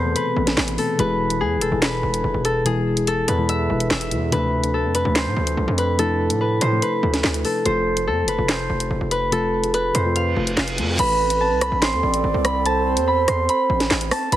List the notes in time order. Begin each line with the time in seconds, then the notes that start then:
Already playing: E2 B2 C3 E3 A3 B3 C4 G#4 A4 C5
0.04 B2 E3 A3 C4 A4
0.16 B4, closed hi-hat
0.35 A1 E3 A3 B3 C4 A4
0.47 snare, closed hi-hat
0.57 A1, snare, clap
0.68 closed hi-hat
0.77 B2 E3 A3 C4 A4, open hi-hat
0.98 E1 B2 E3 G#3 E4 G#4 B4, closed hi-hat
1.29 B2 E3 G#3 E4 G#4, closed hi-hat
1.41 E2 G#4
1.56 E1
1.61 A4, closed hi-hat
1.70 E1 B2 E3 G#3 E4 G#4
1.82 B4, snare, clap, closed hi-hat
2.03 E1
2.14 closed hi-hat
2.24 E1
2.34 E1
2.45 A4, closed hi-hat
2.64 B2 E3 G#3 E4 G#4, closed hi-hat
2.96 B2 E3 G#3 E4 G#4, closed hi-hat
3.07 A4, closed hi-hat
3.28 E2 B4, closed hi-hat
3.37 B2 E3 G#3 E4 B4
3.49 E5, closed hi-hat
3.68 E1 B2 E3 G#3 E4 B4
3.80 closed hi-hat
3.91 E1 E5, snare, clap
4.01 closed hi-hat
4.10 E2 B2 E3 G#3 E4 B4, closed hi-hat
4.31 D2 C3 F3 A3 D4 A4 B4, closed hi-hat
4.62 C3 F3 A3 D4 A4, closed hi-hat
4.74 A4
4.84 F2
4.95 B4, closed hi-hat
5.04 D2 C3 F3 A3 D4 A4
5.16 C5, snare, clap, closed hi-hat
5.26 A2
5.36 D2
5.47 closed hi-hat
5.57 C2
5.68 F2
5.78 B4, closed hi-hat
5.98 C3 F3 A3 D4 E4 A4, closed hi-hat
6.29 A2 C3 F3 A3 D4 B4, closed hi-hat
6.41 B4
6.61 A2 C5, closed hi-hat
6.71 C3 F3 A3 D4 A4
6.82 B4, closed hi-hat
7.02 D2 C3 F3 A3 D4 A4
7.14 snare, closed hi-hat
7.24 D2, snare, clap
7.34 closed hi-hat
7.43 C3 F3 A3 D4 A4 B4, open hi-hat
7.64 F1 C3 F3 A3 F4 A4 C5, closed hi-hat
7.95 C3 F3 A3 F4 A4, closed hi-hat
8.07 F2 A4
8.23 F1
8.28 B4, closed hi-hat
8.37 F1 C3 F3 A3 F4 A4
8.49 C5, snare, clap, closed hi-hat
8.70 F1
8.80 closed hi-hat
8.91 F1
9.01 F1
9.11 B4, closed hi-hat
9.31 C3 F3 A3 F4 A4, closed hi-hat
9.62 C3 F3 A3 F4 G#4, closed hi-hat
9.74 B4, closed hi-hat
9.95 F2 C5, closed hi-hat
10.04 C3 F3 A3 F4 B4
10.16 F5, closed hi-hat, reverse cymbal
10.35 F1 C3 F3 A3 F4 A4
10.47 closed hi-hat
10.57 F1 F5, snare, clap
10.68 closed hi-hat
10.77 F2 C3 F3 A3 F4 A4, closed hi-hat
10.99 A1 C4 A4 B4 B5, closed hi-hat, crash
11.30 closed hi-hat
11.41 A5
11.51 C2
11.61 B5, cross-stick, closed hi-hat
11.72 A1
11.82 C5 C6, snare, clap, closed hi-hat
11.93 E2
12.03 A1 D5
12.14 closed hi-hat
12.24 G#1
12.34 C2
12.45 B5, cross-stick, closed hi-hat
12.65 C5 A5, closed hi-hat
12.97 E2, closed hi-hat
13.08 B5
13.28 E2 C6, cross-stick, closed hi-hat
13.49 B5, closed hi-hat
13.70 A1
13.80 snare, closed hi-hat
13.90 A1, snare, clap
14.01 closed hi-hat
14.11 A5, cross-stick, open hi-hat
14.32 E1 E4 B4 G#5 B5, closed hi-hat